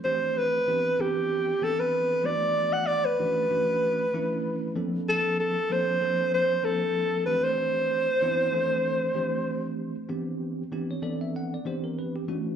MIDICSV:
0, 0, Header, 1, 3, 480
1, 0, Start_track
1, 0, Tempo, 627615
1, 41, Time_signature, 4, 2, 24, 8
1, 9605, End_track
2, 0, Start_track
2, 0, Title_t, "Alto saxophone"
2, 0, Program_c, 0, 65
2, 36, Note_on_c, 0, 72, 79
2, 289, Note_on_c, 0, 71, 81
2, 301, Note_off_c, 0, 72, 0
2, 773, Note_on_c, 0, 67, 76
2, 784, Note_off_c, 0, 71, 0
2, 1252, Note_on_c, 0, 69, 77
2, 1264, Note_off_c, 0, 67, 0
2, 1375, Note_on_c, 0, 71, 75
2, 1387, Note_off_c, 0, 69, 0
2, 1727, Note_on_c, 0, 74, 82
2, 1738, Note_off_c, 0, 71, 0
2, 2089, Note_on_c, 0, 78, 81
2, 2100, Note_off_c, 0, 74, 0
2, 2191, Note_on_c, 0, 74, 90
2, 2203, Note_off_c, 0, 78, 0
2, 2335, Note_on_c, 0, 71, 83
2, 2346, Note_off_c, 0, 74, 0
2, 3643, Note_off_c, 0, 71, 0
2, 3894, Note_on_c, 0, 69, 88
2, 4112, Note_off_c, 0, 69, 0
2, 4127, Note_on_c, 0, 69, 85
2, 4378, Note_on_c, 0, 72, 98
2, 4390, Note_off_c, 0, 69, 0
2, 4845, Note_off_c, 0, 72, 0
2, 4849, Note_on_c, 0, 72, 93
2, 5084, Note_on_c, 0, 69, 83
2, 5095, Note_off_c, 0, 72, 0
2, 5547, Note_off_c, 0, 69, 0
2, 5552, Note_on_c, 0, 71, 80
2, 5689, Note_on_c, 0, 72, 86
2, 5700, Note_off_c, 0, 71, 0
2, 7477, Note_off_c, 0, 72, 0
2, 9605, End_track
3, 0, Start_track
3, 0, Title_t, "Tine electric piano"
3, 0, Program_c, 1, 4
3, 36, Note_on_c, 1, 52, 63
3, 37, Note_on_c, 1, 60, 59
3, 38, Note_on_c, 1, 57, 61
3, 39, Note_on_c, 1, 62, 61
3, 41, Note_on_c, 1, 67, 77
3, 444, Note_off_c, 1, 52, 0
3, 445, Note_off_c, 1, 57, 0
3, 445, Note_off_c, 1, 60, 0
3, 446, Note_off_c, 1, 62, 0
3, 446, Note_off_c, 1, 67, 0
3, 520, Note_on_c, 1, 52, 74
3, 521, Note_on_c, 1, 59, 66
3, 523, Note_on_c, 1, 60, 71
3, 523, Note_on_c, 1, 62, 65
3, 526, Note_on_c, 1, 67, 84
3, 723, Note_off_c, 1, 52, 0
3, 724, Note_off_c, 1, 59, 0
3, 725, Note_off_c, 1, 60, 0
3, 725, Note_off_c, 1, 62, 0
3, 726, Note_off_c, 1, 67, 0
3, 757, Note_on_c, 1, 52, 66
3, 760, Note_on_c, 1, 59, 65
3, 760, Note_on_c, 1, 67, 74
3, 761, Note_on_c, 1, 62, 60
3, 764, Note_on_c, 1, 60, 63
3, 1165, Note_off_c, 1, 52, 0
3, 1167, Note_off_c, 1, 59, 0
3, 1167, Note_off_c, 1, 62, 0
3, 1167, Note_off_c, 1, 67, 0
3, 1168, Note_off_c, 1, 60, 0
3, 1236, Note_on_c, 1, 60, 61
3, 1238, Note_on_c, 1, 52, 69
3, 1239, Note_on_c, 1, 62, 63
3, 1241, Note_on_c, 1, 59, 67
3, 1241, Note_on_c, 1, 69, 77
3, 1701, Note_off_c, 1, 52, 0
3, 1704, Note_off_c, 1, 59, 0
3, 1705, Note_off_c, 1, 62, 0
3, 1710, Note_on_c, 1, 57, 65
3, 1711, Note_on_c, 1, 52, 72
3, 1713, Note_on_c, 1, 59, 65
3, 1714, Note_on_c, 1, 62, 61
3, 1714, Note_on_c, 1, 66, 79
3, 1719, Note_off_c, 1, 60, 0
3, 1722, Note_off_c, 1, 69, 0
3, 2324, Note_off_c, 1, 52, 0
3, 2324, Note_off_c, 1, 57, 0
3, 2326, Note_off_c, 1, 59, 0
3, 2326, Note_off_c, 1, 62, 0
3, 2326, Note_off_c, 1, 66, 0
3, 2444, Note_on_c, 1, 52, 77
3, 2444, Note_on_c, 1, 57, 69
3, 2445, Note_on_c, 1, 62, 71
3, 2446, Note_on_c, 1, 61, 68
3, 2448, Note_on_c, 1, 66, 83
3, 2646, Note_off_c, 1, 52, 0
3, 2647, Note_off_c, 1, 57, 0
3, 2647, Note_off_c, 1, 61, 0
3, 2647, Note_off_c, 1, 62, 0
3, 2648, Note_off_c, 1, 66, 0
3, 2677, Note_on_c, 1, 57, 65
3, 2681, Note_on_c, 1, 52, 70
3, 2681, Note_on_c, 1, 61, 62
3, 2682, Note_on_c, 1, 62, 63
3, 2682, Note_on_c, 1, 66, 79
3, 3086, Note_off_c, 1, 57, 0
3, 3088, Note_off_c, 1, 52, 0
3, 3088, Note_off_c, 1, 61, 0
3, 3088, Note_off_c, 1, 66, 0
3, 3089, Note_off_c, 1, 62, 0
3, 3163, Note_on_c, 1, 52, 83
3, 3167, Note_on_c, 1, 57, 81
3, 3167, Note_on_c, 1, 61, 75
3, 3168, Note_on_c, 1, 62, 74
3, 3171, Note_on_c, 1, 64, 91
3, 3634, Note_off_c, 1, 62, 0
3, 3637, Note_on_c, 1, 53, 84
3, 3637, Note_on_c, 1, 60, 79
3, 3639, Note_on_c, 1, 58, 78
3, 3643, Note_off_c, 1, 52, 0
3, 3643, Note_on_c, 1, 62, 77
3, 3643, Note_on_c, 1, 69, 93
3, 3645, Note_off_c, 1, 61, 0
3, 3646, Note_off_c, 1, 57, 0
3, 3647, Note_off_c, 1, 64, 0
3, 4248, Note_off_c, 1, 53, 0
3, 4248, Note_off_c, 1, 58, 0
3, 4248, Note_off_c, 1, 60, 0
3, 4250, Note_off_c, 1, 69, 0
3, 4251, Note_off_c, 1, 62, 0
3, 4359, Note_on_c, 1, 53, 78
3, 4360, Note_on_c, 1, 58, 71
3, 4361, Note_on_c, 1, 60, 68
3, 4362, Note_on_c, 1, 62, 69
3, 4364, Note_on_c, 1, 69, 83
3, 4564, Note_off_c, 1, 53, 0
3, 4565, Note_off_c, 1, 58, 0
3, 4565, Note_off_c, 1, 60, 0
3, 4566, Note_off_c, 1, 62, 0
3, 4567, Note_off_c, 1, 69, 0
3, 4594, Note_on_c, 1, 58, 60
3, 4596, Note_on_c, 1, 53, 69
3, 4598, Note_on_c, 1, 60, 67
3, 4600, Note_on_c, 1, 69, 77
3, 4603, Note_on_c, 1, 62, 67
3, 5004, Note_off_c, 1, 58, 0
3, 5005, Note_off_c, 1, 53, 0
3, 5006, Note_off_c, 1, 60, 0
3, 5007, Note_off_c, 1, 69, 0
3, 5009, Note_off_c, 1, 62, 0
3, 5071, Note_on_c, 1, 53, 69
3, 5072, Note_on_c, 1, 60, 65
3, 5074, Note_on_c, 1, 58, 63
3, 5077, Note_on_c, 1, 62, 63
3, 5077, Note_on_c, 1, 69, 74
3, 5552, Note_off_c, 1, 62, 0
3, 5553, Note_off_c, 1, 60, 0
3, 5557, Note_off_c, 1, 53, 0
3, 5558, Note_off_c, 1, 58, 0
3, 5560, Note_off_c, 1, 69, 0
3, 5560, Note_on_c, 1, 52, 74
3, 5561, Note_on_c, 1, 62, 65
3, 5562, Note_on_c, 1, 57, 67
3, 5562, Note_on_c, 1, 60, 69
3, 5566, Note_on_c, 1, 67, 77
3, 6168, Note_off_c, 1, 52, 0
3, 6169, Note_off_c, 1, 57, 0
3, 6169, Note_off_c, 1, 60, 0
3, 6169, Note_off_c, 1, 62, 0
3, 6171, Note_off_c, 1, 67, 0
3, 6283, Note_on_c, 1, 59, 80
3, 6286, Note_on_c, 1, 52, 91
3, 6286, Note_on_c, 1, 60, 83
3, 6288, Note_on_c, 1, 62, 78
3, 6288, Note_on_c, 1, 64, 97
3, 6485, Note_off_c, 1, 59, 0
3, 6486, Note_off_c, 1, 52, 0
3, 6487, Note_off_c, 1, 60, 0
3, 6487, Note_off_c, 1, 62, 0
3, 6487, Note_off_c, 1, 64, 0
3, 6518, Note_on_c, 1, 52, 78
3, 6518, Note_on_c, 1, 57, 77
3, 6521, Note_on_c, 1, 60, 75
3, 6522, Note_on_c, 1, 62, 76
3, 6525, Note_on_c, 1, 69, 90
3, 6925, Note_off_c, 1, 52, 0
3, 6925, Note_off_c, 1, 57, 0
3, 6927, Note_off_c, 1, 60, 0
3, 6927, Note_off_c, 1, 62, 0
3, 6928, Note_off_c, 1, 69, 0
3, 6993, Note_on_c, 1, 57, 78
3, 6995, Note_on_c, 1, 52, 80
3, 6996, Note_on_c, 1, 62, 77
3, 6998, Note_on_c, 1, 60, 73
3, 6999, Note_on_c, 1, 67, 84
3, 7604, Note_off_c, 1, 52, 0
3, 7604, Note_off_c, 1, 57, 0
3, 7605, Note_off_c, 1, 62, 0
3, 7606, Note_off_c, 1, 60, 0
3, 7606, Note_off_c, 1, 67, 0
3, 7716, Note_on_c, 1, 62, 69
3, 7718, Note_on_c, 1, 52, 77
3, 7718, Note_on_c, 1, 60, 71
3, 7719, Note_on_c, 1, 59, 75
3, 7721, Note_on_c, 1, 67, 90
3, 8123, Note_off_c, 1, 62, 0
3, 8124, Note_off_c, 1, 52, 0
3, 8124, Note_off_c, 1, 59, 0
3, 8124, Note_off_c, 1, 60, 0
3, 8125, Note_off_c, 1, 67, 0
3, 8198, Note_on_c, 1, 52, 77
3, 8202, Note_on_c, 1, 59, 64
3, 8202, Note_on_c, 1, 62, 70
3, 8205, Note_on_c, 1, 60, 67
3, 8205, Note_on_c, 1, 67, 84
3, 8341, Note_on_c, 1, 73, 67
3, 8401, Note_off_c, 1, 52, 0
3, 8403, Note_off_c, 1, 59, 0
3, 8403, Note_off_c, 1, 62, 0
3, 8404, Note_off_c, 1, 67, 0
3, 8405, Note_off_c, 1, 60, 0
3, 8430, Note_on_c, 1, 52, 67
3, 8431, Note_on_c, 1, 59, 63
3, 8431, Note_on_c, 1, 60, 67
3, 8434, Note_on_c, 1, 62, 59
3, 8434, Note_on_c, 1, 69, 77
3, 8435, Note_on_c, 1, 74, 81
3, 8440, Note_off_c, 1, 73, 0
3, 8565, Note_off_c, 1, 74, 0
3, 8575, Note_on_c, 1, 76, 75
3, 8677, Note_off_c, 1, 76, 0
3, 8689, Note_on_c, 1, 78, 88
3, 8812, Note_off_c, 1, 78, 0
3, 8826, Note_on_c, 1, 74, 71
3, 8839, Note_off_c, 1, 52, 0
3, 8840, Note_off_c, 1, 59, 0
3, 8840, Note_off_c, 1, 60, 0
3, 8841, Note_off_c, 1, 62, 0
3, 8841, Note_off_c, 1, 69, 0
3, 8913, Note_on_c, 1, 52, 73
3, 8916, Note_on_c, 1, 60, 67
3, 8918, Note_on_c, 1, 59, 69
3, 8918, Note_on_c, 1, 62, 68
3, 8922, Note_on_c, 1, 67, 78
3, 8922, Note_on_c, 1, 72, 81
3, 8923, Note_off_c, 1, 74, 0
3, 9049, Note_off_c, 1, 72, 0
3, 9054, Note_on_c, 1, 70, 65
3, 9156, Note_off_c, 1, 70, 0
3, 9167, Note_on_c, 1, 71, 78
3, 9288, Note_off_c, 1, 67, 0
3, 9291, Note_off_c, 1, 71, 0
3, 9297, Note_on_c, 1, 67, 76
3, 9359, Note_off_c, 1, 67, 0
3, 9382, Note_off_c, 1, 52, 0
3, 9387, Note_off_c, 1, 62, 0
3, 9391, Note_on_c, 1, 52, 71
3, 9394, Note_on_c, 1, 57, 70
3, 9395, Note_on_c, 1, 61, 68
3, 9396, Note_off_c, 1, 60, 0
3, 9397, Note_off_c, 1, 59, 0
3, 9397, Note_on_c, 1, 62, 68
3, 9397, Note_on_c, 1, 66, 83
3, 9605, Note_off_c, 1, 52, 0
3, 9605, Note_off_c, 1, 57, 0
3, 9605, Note_off_c, 1, 61, 0
3, 9605, Note_off_c, 1, 62, 0
3, 9605, Note_off_c, 1, 66, 0
3, 9605, End_track
0, 0, End_of_file